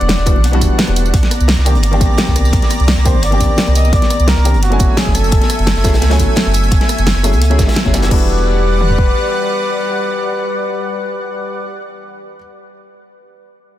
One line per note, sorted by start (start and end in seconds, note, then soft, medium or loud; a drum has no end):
0.00 0.16 E1 loud
0.00 0.24 E3 medium
0.00 0.24 G3 medium
0.00 0.24 B3 medium
0.00 0.25 D4 medium
0.00 1.10 D4 medium
0.00 0.25 F#4 loud
0.00 0.44 D5 loud
0.00 1.10 F#5 medium
0.00 closed hi-hat soft
0.09 snare loud
0.09 closed hi-hat medium
0.09 high conga medium
0.18 0.37 E1 medium
0.18 snare soft
0.26 0.32 E3 medium
0.26 0.32 G3 medium
0.26 0.32 B3 medium
0.26 0.32 D4 medium
0.26 0.33 F#4 loud
0.26 kick loud
0.26 cross-stick soft
0.26 closed hi-hat medium
0.26 tambourine medium
0.36 0.63 B1 loud
0.36 high conga loud
0.44 closed hi-hat medium
0.44 closed hi-hat loud
0.52 1.12 E3 medium
0.52 1.12 G3 medium
0.52 1.13 B3 medium
0.52 1.13 D4 medium
0.52 1.13 F#4 loud
0.52 closed hi-hat soft
0.61 0.70 E1 medium
0.61 kick medium
0.61 closed hi-hat medium
0.61 tambourine medium
0.61 high conga medium
0.79 snare loud
0.79 closed hi-hat medium
0.88 1.12 E1 loud
0.88 cross-stick soft
0.88 high conga loud
0.96 closed hi-hat medium
0.96 tambourine medium
1.06 tambourine soft
1.14 1.22 C2 loud
1.14 4.59 D5 medium
1.14 4.59 A#5 medium
1.14 kick loud
1.14 closed hi-hat medium
1.23 snare soft
1.23 closed hi-hat soft
1.23 high conga medium
1.31 cross-stick soft
1.31 closed hi-hat medium
1.31 tambourine medium
1.40 1.56 C2 loud
1.40 closed hi-hat soft
1.40 tambourine soft
1.48 snare loud
1.48 closed hi-hat medium
1.48 high conga medium
1.58 1.77 C2 medium
1.58 snare medium
1.65 1.71 D#3 medium
1.65 1.72 A#3 medium
1.65 1.72 C4 medium
1.65 1.72 D4 medium
1.65 1.72 G4 loud
1.65 closed hi-hat medium
1.65 tambourine medium
1.75 2.02 G1 medium
1.75 closed hi-hat soft
1.75 high conga medium
1.83 closed hi-hat medium
1.91 3.03 D#3 loud
1.91 3.03 A#3 medium
1.91 3.03 C4 medium
1.91 3.04 D4 medium
1.91 3.04 G4 loud
1.91 closed hi-hat soft
2.01 2.09 C2 medium
2.01 kick loud
2.01 closed hi-hat medium
2.01 tambourine medium
2.01 high conga medium
2.18 snare loud
2.18 closed hi-hat medium
2.27 2.52 C2 medium
2.27 kick medium
2.27 snare soft
2.27 high conga loud
2.36 cross-stick soft
2.36 closed hi-hat medium
2.36 tambourine medium
2.45 tambourine soft
2.53 2.61 C2 loud
2.53 kick loud
2.53 closed hi-hat medium
2.62 snare soft
2.62 closed hi-hat soft
2.62 high conga medium
2.70 cross-stick soft
2.70 closed hi-hat medium
2.70 tambourine medium
2.80 2.95 C2 loud
2.80 closed hi-hat soft
2.88 snare loud
2.88 closed hi-hat medium
2.88 high conga medium
2.97 3.16 C2 medium
2.97 snare soft
3.05 3.11 D#3 medium
3.05 3.11 A#3 medium
3.05 3.11 C4 medium
3.05 3.12 D4 medium
3.05 3.12 G4 loud
3.05 3.25 C5 loud
3.05 kick loud
3.05 cross-stick soft
3.05 closed hi-hat medium
3.05 tambourine medium
3.15 3.42 G1 medium
3.15 high conga medium
3.23 3.75 D5 loud
3.23 closed hi-hat medium
3.30 4.42 D#3 medium
3.30 4.43 A#3 medium
3.30 4.43 C4 medium
3.30 4.43 D4 medium
3.30 4.44 G4 loud
3.30 closed hi-hat soft
3.40 3.49 C2 medium
3.40 kick medium
3.40 closed hi-hat medium
3.40 tambourine medium
3.40 high conga medium
3.58 snare loud
3.58 closed hi-hat medium
3.67 3.92 C2 loud
3.67 cross-stick soft
3.67 high conga loud
3.75 3.95 D#5 loud
3.75 closed hi-hat medium
3.75 tambourine medium
3.85 tambourine soft
3.93 4.01 C2 loud
3.93 4.29 D5 loud
3.93 kick loud
3.93 closed hi-hat medium
4.02 snare soft
4.02 closed hi-hat soft
4.02 high conga medium
4.10 cross-stick soft
4.10 closed hi-hat medium
4.10 tambourine medium
4.19 4.35 C2 loud
4.19 closed hi-hat soft
4.19 tambourine soft
4.28 4.62 A#4 loud
4.28 snare loud
4.28 closed hi-hat medium
4.28 high conga medium
4.36 4.56 C2 medium
4.36 snare medium
4.44 4.50 D#3 medium
4.44 4.51 A#3 medium
4.44 4.51 C4 medium
4.44 4.51 D4 medium
4.44 4.51 G4 loud
4.44 closed hi-hat medium
4.44 tambourine medium
4.54 4.79 F#1 medium
4.54 closed hi-hat soft
4.54 high conga medium
4.63 8.08 A3 medium
4.63 4.99 F#4 loud
4.63 8.08 E5 medium
4.63 8.08 G#5 medium
4.63 closed hi-hat medium
4.70 5.82 F#3 loud
4.70 5.82 A3 medium
4.70 5.82 C#4 medium
4.70 5.83 E4 medium
4.70 5.83 G#5 loud
4.70 closed hi-hat soft
4.79 4.88 F#1 medium
4.79 kick loud
4.79 closed hi-hat medium
4.79 tambourine medium
4.79 high conga medium
4.97 5.16 G#4 loud
4.97 snare loud
4.97 closed hi-hat medium
5.06 5.31 F#1 loud
5.06 kick medium
5.06 snare soft
5.06 high conga medium
5.15 6.54 A4 loud
5.15 cross-stick soft
5.15 closed hi-hat medium
5.15 tambourine medium
5.24 tambourine soft
5.32 5.41 F#1 loud
5.32 kick loud
5.32 closed hi-hat medium
5.41 snare medium
5.41 closed hi-hat soft
5.41 high conga medium
5.50 cross-stick soft
5.50 closed hi-hat medium
5.50 tambourine medium
5.59 5.74 F#1 loud
5.59 closed hi-hat soft
5.67 snare loud
5.67 closed hi-hat medium
5.67 high conga medium
5.76 5.95 F#1 medium
5.76 snare soft
5.84 5.90 F#3 medium
5.84 5.90 A3 medium
5.84 5.90 C#4 medium
5.84 5.91 E4 medium
5.84 5.91 G#4 loud
5.84 kick loud
5.84 cross-stick soft
5.84 snare loud
5.84 closed hi-hat medium
5.84 tambourine medium
5.93 6.21 C#2 medium
5.93 snare loud
5.93 closed hi-hat medium
5.93 high conga medium
6.02 snare loud
6.02 closed hi-hat medium
6.02 closed hi-hat loud
6.09 7.21 F#3 medium
6.09 7.22 A3 medium
6.09 7.22 C#4 medium
6.09 7.22 E4 medium
6.09 7.23 G#5 loud
6.09 snare loud
6.09 closed hi-hat medium
6.09 closed hi-hat soft
6.19 6.28 F#1 medium
6.19 kick medium
6.19 closed hi-hat medium
6.19 tambourine medium
6.19 high conga medium
6.36 snare loud
6.36 closed hi-hat medium
6.36 closed hi-hat loud
6.46 6.70 F#1 loud
6.46 cross-stick soft
6.46 high conga medium
6.54 closed hi-hat medium
6.54 tambourine medium
6.64 tambourine soft
6.71 6.80 F#1 loud
6.71 kick loud
6.71 closed hi-hat medium
6.71 closed hi-hat loud
6.81 snare soft
6.81 closed hi-hat soft
6.81 high conga medium
6.89 cross-stick soft
6.89 closed hi-hat medium
6.89 tambourine medium
6.98 7.14 F#1 loud
6.98 closed hi-hat soft
6.98 tambourine soft
7.06 snare loud
7.06 closed hi-hat medium
7.06 closed hi-hat loud
7.06 high conga medium
7.16 7.35 F#1 medium
7.16 snare soft
7.23 7.30 F#3 medium
7.23 7.30 A3 medium
7.23 7.30 C#4 medium
7.23 7.30 E4 medium
7.23 7.30 G#4 loud
7.23 cross-stick soft
7.23 closed hi-hat medium
7.23 tambourine medium
7.33 7.60 C#2 medium
7.33 closed hi-hat soft
7.33 tambourine soft
7.33 high conga medium
7.41 closed hi-hat loud
7.50 7.57 F#3 medium
7.50 7.57 A3 medium
7.50 7.57 C#4 medium
7.50 7.57 E4 medium
7.50 7.58 G#4 loud
7.50 closed hi-hat soft
7.58 7.67 F#1 medium
7.58 7.64 F#3 medium
7.58 7.65 A3 medium
7.58 7.65 C#4 medium
7.58 7.65 E4 medium
7.58 7.65 G#4 medium
7.58 kick loud
7.58 snare loud
7.58 closed hi-hat medium
7.58 tambourine medium
7.58 high conga medium
7.68 snare medium
7.68 closed hi-hat medium
7.72 snare medium
7.72 closed hi-hat medium
7.76 snare loud
7.76 closed hi-hat medium
7.76 closed hi-hat loud
7.85 8.10 F#1 medium
7.85 7.91 F#3 medium
7.85 7.92 A3 medium
7.85 7.92 C#4 medium
7.85 7.92 E4 medium
7.85 7.92 G#4 medium
7.85 kick medium
7.85 snare soft
7.85 high conga loud
7.93 8.08 E3 medium
7.93 8.09 G3 medium
7.93 8.10 B3 medium
7.93 8.11 D4 medium
7.93 8.12 F#4 medium
7.93 cross-stick soft
7.93 snare loud
7.93 closed hi-hat medium
7.93 tambourine medium
8.02 snare loud
8.02 closed hi-hat medium
8.02 tambourine soft
8.09 9.12 E1 loud
8.09 12.35 E3 medium
8.09 12.36 G3 medium
8.09 11.66 G3 medium
8.09 12.36 B3 medium
8.09 12.37 D4 medium
8.09 11.66 B4 loud
8.09 11.66 D5 medium
8.09 11.66 F#5 medium
8.09 kick loud
8.09 crash medium
8.14 12.38 F#4 loud
8.81 mid tom medium
8.90 floor tom medium
8.98 kick medium